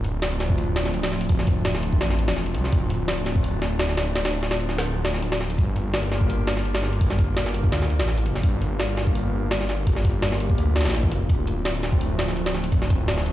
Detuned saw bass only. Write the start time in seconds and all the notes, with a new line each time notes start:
Already playing: D1
1.30 D1
2.01 A1
2.28 E1
2.55 C2
2.73 D1
4.16 D1
4.87 D1
5.58 G1
7.01 G1
7.72 D2
8.00 A1
8.26 F1
8.44 G1
9.87 G1
10.58 D2
10.86 A1
11.12 F1
11.30 D1
12.72 D1